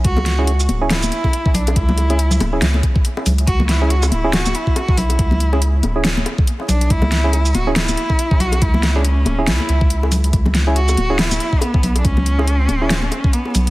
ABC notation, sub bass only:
X:1
M:4/4
L:1/16
Q:"Swing 16ths" 1/4=140
K:C#phr
V:1 name="Sub bass" clef=bass
C,,6 D,,,4 z4 B,,,2 | C,,6 D,,,2 C,,2 z4 C,,2 | C,,6 D,,,4 z4 B,,,2 | C,,6 D,,,4 z4 B,,,2 |
C,,6 D,,,4 z4 B,,,2 | C,,6 D,,,2 C,, z C,,6 | C,,6 D,,,4 z4 B,,,2 | C,,6 D,,,4 z4 B,,,2 |]